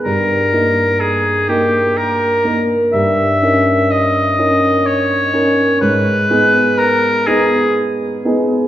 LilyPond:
<<
  \new Staff \with { instrumentName = "Oboe" } { \time 3/4 \key dis \phrygian \tempo 4 = 62 ais'4 gis'8 g'8 ais'8 r8 | e''4 dis''4 cis''4 | b'4 ais'8 gis'8 r4 | }
  \new Staff \with { instrumentName = "Grand piano" } { \time 3/4 \key dis \phrygian g,8 <ais dis' ais'>4 <ais dis' ais'>4 <ais dis'>8 | g,8 <cis' dis' ais'>4 <cis' dis' ais'>4 <cis' dis' ais'>8 | gis,8 <b dis' gis'>4 <b dis' gis'>4 <b dis' gis'>8 | }
>>